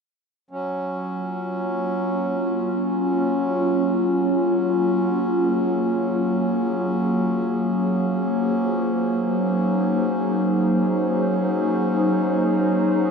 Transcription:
0.50 F#3 C#4
0.90 C#4 F4
1.06 A#3
2.33 G#4
8.19 C5
9.20 D#4

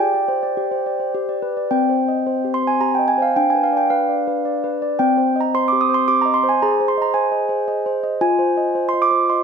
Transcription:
0.00 G4 G5
0.14 D5
0.28 C5
0.43 D5
0.57 G4
0.71 C5
0.86 D5
1.00 C5
1.15 G4
1.29 D5
1.42 B4
1.57 D5
1.71 C4 G5
1.89 C5
2.08 D#5
2.27 C5
2.44 G4
2.54 C6
2.63 C5
2.67 G#5
2.80 G4 A#5
2.95 G5
2.99 D#5
3.08 G#5
3.18 C5
3.22 F5
3.36 D4 G5
3.50 G#5
3.55 B4
3.63 F5
3.73 D5
3.77 G5
3.90 B4 F5
4.09 D5
4.27 B4
4.45 D5
4.64 B4
4.82 D5
4.99 C4 G5
5.17 C5
5.36 D#5
5.41 A#5
5.55 C5 C6
5.68 D6
5.73 G4
5.81 D#6
5.89 C5
5.94 C6
6.08 G4 D6
6.22 D#5 A#5
6.34 C6
6.43 C5
6.49 G#5
6.62 G#4 A#5
6.80 C5
6.88 C6
6.98 D#5
7.02 A#5
7.14 C5 G#5
7.32 D#5
7.49 C5
7.68 D#5
7.86 C5
8.04 D#5
8.21 F4 G#5
8.39 C5
8.57 D#5
8.75 C5
8.89 C6
8.93 D#5
9.02 D6
9.11 C5
9.30 D#5 C6

